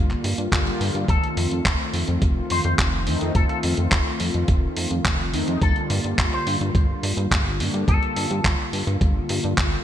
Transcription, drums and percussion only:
0.10 clap soft
0.10 closed hi-hat soft
0.24 open hi-hat medium
0.38 closed hi-hat medium
0.52 kick medium
0.52 clap loud
0.52 closed hi-hat medium
0.67 closed hi-hat soft
0.81 open hi-hat medium
0.95 closed hi-hat medium
1.08 kick loud
1.08 closed hi-hat medium
1.24 closed hi-hat soft
1.37 open hi-hat loud
1.51 closed hi-hat soft
1.65 kick loud
1.65 clap loud
1.65 closed hi-hat medium
1.94 open hi-hat medium
2.08 closed hi-hat soft
2.22 kick loud
2.22 closed hi-hat medium
2.50 open hi-hat loud
2.64 closed hi-hat medium
2.78 kick loud
2.78 clap loud
2.78 closed hi-hat medium
3.07 open hi-hat medium
3.21 closed hi-hat medium
3.35 kick loud
3.35 closed hi-hat medium
3.49 closed hi-hat soft
3.63 open hi-hat loud
3.77 closed hi-hat soft
3.91 kick loud
3.91 clap loud
3.91 closed hi-hat medium
4.20 open hi-hat medium
4.34 closed hi-hat soft
4.48 kick loud
4.48 closed hi-hat medium
4.77 open hi-hat loud
4.91 closed hi-hat medium
5.05 kick loud
5.05 clap loud
5.05 closed hi-hat medium
5.34 open hi-hat medium
5.48 closed hi-hat medium
5.62 kick loud
5.62 closed hi-hat medium
5.76 closed hi-hat soft
5.90 open hi-hat loud
6.04 closed hi-hat soft
6.18 kick loud
6.18 clap loud
6.18 closed hi-hat medium
6.47 open hi-hat medium
6.61 closed hi-hat soft
6.75 kick loud
6.75 closed hi-hat medium
7.03 open hi-hat loud
7.18 closed hi-hat medium
7.31 kick loud
7.31 clap loud
7.31 closed hi-hat medium
7.60 open hi-hat medium
7.74 closed hi-hat soft
7.88 kick loud
7.88 closed hi-hat medium
8.03 closed hi-hat soft
8.16 open hi-hat loud
8.31 closed hi-hat soft
8.44 kick loud
8.44 clap loud
8.44 closed hi-hat medium
8.73 open hi-hat medium
8.87 closed hi-hat soft
9.01 kick loud
9.01 closed hi-hat medium
9.29 open hi-hat loud
9.44 closed hi-hat soft
9.58 kick loud
9.58 clap loud
9.58 closed hi-hat medium

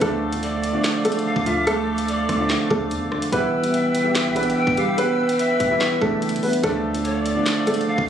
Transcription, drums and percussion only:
0.01 kick loud
0.01 closed hi-hat medium
0.33 closed hi-hat medium
0.43 closed hi-hat medium
0.64 closed hi-hat medium
0.84 snare loud
0.84 clap medium
0.84 closed hi-hat medium
1.05 closed hi-hat medium
1.12 closed hi-hat medium
1.19 closed hi-hat soft
1.36 kick loud
1.46 closed hi-hat medium
1.67 closed hi-hat medium
1.98 closed hi-hat medium
2.08 closed hi-hat medium
2.29 kick loud
2.29 cross-stick loud
2.29 closed hi-hat medium
2.50 snare loud
2.50 clap loud
2.70 kick loud
2.91 closed hi-hat medium
3.12 cross-stick loud
3.22 closed hi-hat medium
3.33 kick loud
3.33 closed hi-hat medium
3.64 closed hi-hat medium
3.74 closed hi-hat medium
3.95 closed hi-hat medium
4.15 snare loud
4.15 clap medium
4.15 closed hi-hat medium
4.36 closed hi-hat medium
4.43 closed hi-hat medium
4.50 closed hi-hat soft
4.67 kick loud
4.77 closed hi-hat medium
4.98 closed hi-hat medium
5.29 closed hi-hat medium
5.39 closed hi-hat medium
5.60 kick medium
5.60 closed hi-hat medium
5.81 snare loud
5.81 clap medium
6.02 kick loud
6.22 closed hi-hat medium
6.29 closed hi-hat medium
6.36 closed hi-hat medium
6.43 open hi-hat medium
6.53 closed hi-hat medium
6.63 kick loud
6.63 closed hi-hat medium
6.95 closed hi-hat medium
7.05 closed hi-hat medium
7.26 closed hi-hat medium
7.46 snare loud
7.46 clap loud
7.46 closed hi-hat medium
7.67 closed hi-hat medium
7.74 closed hi-hat medium
7.81 closed hi-hat soft
7.98 kick loud

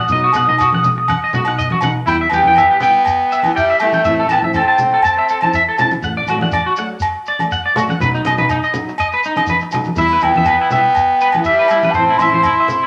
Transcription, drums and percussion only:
0.08 shekere medium
0.33 low conga medium
0.33 low agogo medium
0.33 shekere medium
0.58 low agogo medium
0.58 shekere medium
0.72 high conga medium
0.84 low conga medium
0.84 shekere medium
1.08 high conga medium
1.08 low agogo medium
1.08 shekere medium
1.33 low conga medium
1.33 shekere medium
1.45 low agogo medium
1.59 shekere medium
1.70 high conga medium
1.81 high conga medium
1.81 low conga medium
1.81 low agogo medium
1.81 shekere medium
2.07 shekere medium
2.30 low agogo medium
2.30 shekere medium
2.44 high conga medium
2.56 low agogo medium
2.56 shekere medium
2.80 low conga medium
2.80 shekere medium
3.05 low agogo medium
3.05 shekere medium
3.32 shekere medium
3.43 high conga medium
3.43 low agogo medium
3.43 shekere soft
3.57 shekere medium
3.79 low agogo medium
3.79 shekere medium
3.92 high conga medium
3.92 shekere soft
4.05 shekere medium
4.29 low agogo medium
4.29 shekere medium
4.42 high conga medium
4.54 low agogo medium
4.54 shekere medium
4.78 low conga medium
4.78 shekere medium
5.02 low agogo medium
5.02 shekere medium
5.28 shekere medium
5.41 high conga medium
5.41 low agogo medium
5.53 shekere medium
5.78 low conga medium
5.78 low agogo medium
5.78 shekere medium
5.91 high conga medium
5.91 shekere soft
6.03 shekere medium
6.27 low agogo medium
6.27 shekere medium
6.41 high conga medium
6.51 low agogo medium
6.51 shekere medium
6.76 shekere medium
7.00 low agogo medium
7.00 shekere medium
7.26 shekere medium
7.39 high conga medium
7.39 low agogo medium
7.39 shekere soft
7.52 shekere medium
7.76 low conga medium
7.76 low agogo medium
7.76 shekere medium
7.89 high conga medium
7.89 shekere soft
8.00 low conga medium
8.00 shekere medium
8.15 shekere soft
8.25 low conga medium
8.25 low agogo medium
8.25 shekere medium
8.38 high conga medium
8.38 shekere soft
8.49 low agogo medium
8.49 shekere medium
8.64 shekere soft
8.74 low conga medium
8.74 shekere medium
8.88 shekere soft
8.98 low agogo medium
8.98 shekere medium
9.12 shekere soft
9.23 shekere medium
9.36 high conga medium
9.36 low agogo medium
9.36 shekere soft
9.46 high conga medium
9.46 shekere medium
9.60 shekere soft
9.71 low conga medium
9.71 low agogo medium
9.71 shekere medium
9.84 high conga medium
9.84 shekere soft
9.96 shekere medium
10.20 low agogo medium
10.20 shekere medium
10.36 high conga medium
10.45 low agogo medium
10.45 shekere medium
10.70 low conga medium
10.70 shekere medium
10.95 low agogo medium
10.95 shekere medium
11.21 shekere medium
11.32 high conga medium
11.32 low agogo medium
11.32 shekere soft
11.45 shekere medium
11.68 low agogo medium
11.68 shekere medium
11.83 high conga medium
11.83 shekere soft
11.94 shekere medium
12.19 low agogo medium
12.19 shekere medium
12.32 high conga medium
12.43 low agogo medium
12.43 shekere medium
12.68 low conga medium
12.68 shekere medium

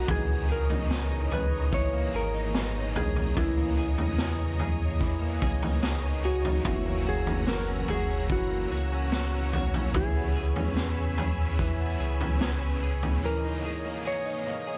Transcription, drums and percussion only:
0.08 kick medium
0.08 floor tom medium
0.70 floor tom medium
0.91 snare loud
1.32 floor tom medium
1.73 kick medium
2.55 snare loud
2.96 floor tom medium
3.16 floor tom medium
3.37 kick medium
3.37 floor tom loud
3.98 floor tom medium
4.18 snare loud
4.59 floor tom medium
5.01 kick medium
5.42 kick medium
5.63 floor tom medium
5.83 snare loud
6.45 floor tom medium
6.65 kick medium
6.65 floor tom loud
7.27 floor tom medium
7.47 snare loud
7.88 floor tom medium
8.30 kick medium
9.12 snare loud
9.53 floor tom medium
9.74 floor tom medium
9.94 kick medium
9.94 floor tom medium
10.56 floor tom medium
10.77 snare loud
11.18 floor tom medium
11.59 kick medium
12.21 floor tom medium
12.41 snare loud
13.03 floor tom medium

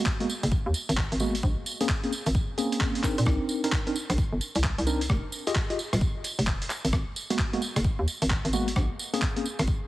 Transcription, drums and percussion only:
0.06 kick loud
0.06 clap loud
0.20 closed hi-hat soft
0.30 tambourine medium
0.43 closed hi-hat medium
0.43 tambourine medium
0.51 kick loud
0.51 tambourine soft
0.74 tambourine medium
0.89 closed hi-hat medium
0.89 tambourine medium
0.97 kick loud
0.97 clap loud
1.12 closed hi-hat soft
1.20 tambourine loud
1.35 closed hi-hat medium
1.35 tambourine medium
1.43 kick loud
1.43 tambourine soft
1.66 tambourine medium
1.80 closed hi-hat medium
1.80 tambourine medium
1.89 kick loud
1.89 clap loud
1.89 tambourine soft
2.04 closed hi-hat soft
2.12 tambourine medium
2.26 closed hi-hat medium
2.26 tambourine medium
2.35 kick loud
2.35 tambourine soft
2.58 closed hi-hat soft
2.58 tambourine medium
2.72 closed hi-hat medium
2.72 tambourine soft
2.81 kick loud
2.81 clap loud
2.95 closed hi-hat soft
3.04 kick medium
3.04 clap medium
3.04 tambourine medium
3.18 closed hi-hat medium
3.18 tambourine medium
3.25 kick loud
3.25 cross-stick medium
3.25 tambourine soft
3.49 tambourine medium
3.64 closed hi-hat medium
3.64 tambourine soft
3.72 kick loud
3.72 clap loud
3.72 tambourine soft
3.87 closed hi-hat soft
3.96 tambourine medium
4.10 cross-stick medium
4.10 closed hi-hat medium
4.10 tambourine medium
4.18 kick loud
4.18 tambourine soft
4.41 tambourine medium
4.55 closed hi-hat medium
4.55 tambourine soft
4.63 kick loud
4.63 clap loud
4.63 tambourine soft
4.78 closed hi-hat medium
4.87 tambourine medium
5.01 closed hi-hat medium
5.01 tambourine soft
5.10 kick loud
5.10 cross-stick medium
5.32 tambourine medium
5.47 closed hi-hat medium
5.47 tambourine soft
5.55 kick loud
5.55 clap loud
5.55 tambourine soft
5.70 closed hi-hat soft
5.79 tambourine medium
5.93 cross-stick medium
5.93 closed hi-hat medium
5.93 tambourine soft
6.01 kick loud
6.01 tambourine soft
6.24 closed hi-hat soft
6.24 tambourine medium
6.39 closed hi-hat medium
6.39 tambourine soft
6.47 kick loud
6.47 clap loud
6.62 closed hi-hat medium
6.70 clap medium
6.70 tambourine medium
6.85 closed hi-hat medium
6.85 tambourine medium
6.93 kick loud
6.93 cross-stick medium
6.93 tambourine soft
7.16 tambourine medium
7.30 closed hi-hat medium
7.30 tambourine soft
7.39 kick loud
7.39 clap loud
7.39 tambourine soft
7.53 closed hi-hat soft
7.62 tambourine medium
7.76 cross-stick medium
7.76 closed hi-hat medium
7.76 tambourine medium
7.84 kick loud
7.84 tambourine soft
8.08 tambourine medium
8.22 closed hi-hat medium
8.22 tambourine soft
8.30 kick loud
8.30 clap loud
8.45 closed hi-hat medium
8.53 tambourine medium
8.68 closed hi-hat medium
8.68 tambourine soft
8.76 kick loud
8.76 cross-stick medium
8.76 tambourine soft
8.99 tambourine medium
9.14 closed hi-hat medium
9.14 tambourine soft
9.22 kick loud
9.22 clap loud
9.36 closed hi-hat soft
9.46 tambourine medium
9.59 cross-stick medium
9.59 closed hi-hat medium
9.59 tambourine medium
9.67 kick loud
9.67 tambourine soft

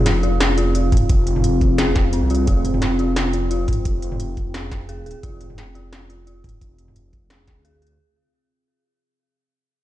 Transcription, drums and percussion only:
0.06 snare medium
0.06 closed hi-hat medium
0.23 closed hi-hat soft
0.40 snare loud
0.40 closed hi-hat medium
0.58 closed hi-hat medium
0.75 closed hi-hat medium
0.92 kick loud
0.92 closed hi-hat soft
0.92 mid tom medium
0.97 closed hi-hat medium
1.09 kick loud
1.09 closed hi-hat medium
1.27 closed hi-hat medium
1.36 mid tom medium
1.44 closed hi-hat medium
1.61 kick medium
1.61 closed hi-hat soft
1.78 snare loud
1.78 closed hi-hat medium
1.96 kick loud
1.96 snare medium
1.96 closed hi-hat medium
2.13 closed hi-hat medium
2.30 closed hi-hat soft
2.35 closed hi-hat medium
2.47 kick loud
2.47 closed hi-hat medium
2.65 closed hi-hat medium
2.65 mid tom soft
2.74 mid tom medium
2.82 snare medium
2.82 closed hi-hat medium
2.99 closed hi-hat soft
3.16 snare loud
3.16 closed hi-hat medium
3.33 closed hi-hat medium
3.51 closed hi-hat medium
3.68 kick loud
3.68 closed hi-hat soft
3.68 mid tom medium
3.73 closed hi-hat medium
3.85 kick loud
3.85 closed hi-hat medium
4.02 closed hi-hat medium
4.12 mid tom medium
4.20 closed hi-hat medium
4.37 kick medium
4.37 closed hi-hat soft
4.54 snare loud
4.54 closed hi-hat medium
4.72 kick loud
4.72 snare medium
4.72 closed hi-hat medium
4.89 closed hi-hat medium
5.06 closed hi-hat soft
5.11 closed hi-hat medium
5.23 kick loud
5.23 closed hi-hat medium
5.41 closed hi-hat medium
5.41 mid tom soft
5.50 mid tom medium
5.58 snare medium
5.58 closed hi-hat medium
5.75 closed hi-hat soft
5.93 snare loud
5.93 closed hi-hat medium
6.10 closed hi-hat medium
6.27 closed hi-hat medium
6.44 kick medium
6.44 closed hi-hat soft
6.44 mid tom medium
6.49 closed hi-hat medium
6.61 kick loud
6.61 closed hi-hat medium
6.79 closed hi-hat medium
6.88 mid tom medium
6.96 closed hi-hat medium
7.13 kick medium
7.13 closed hi-hat soft
7.30 snare loud
7.30 closed hi-hat medium
7.47 kick loud
7.47 snare medium
7.47 closed hi-hat medium
7.65 closed hi-hat medium
7.82 closed hi-hat soft
7.87 closed hi-hat medium

